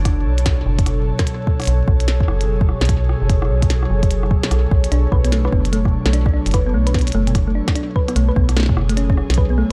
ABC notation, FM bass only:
X:1
M:4/4
L:1/16
Q:"Swing 16ths" 1/4=148
K:Bdor
V:1 name="FM bass" clef=bass
F,,,2 B,,,3 z F,,,4 z6 | B,,, z B,,,3 z F,,,4 z B,,,3 z F,,,- | F,,,2 B,,,3 z F,,,4 z2 B,,, z B,,, z | B,,, z B,,,3 z F,,,4 z B,,,3 z F,,,- |
F,,,2 B,,,3 z F,,,4 z6 | B,,, z B,,,3 z F,,,4 z B,,,3 z2 |]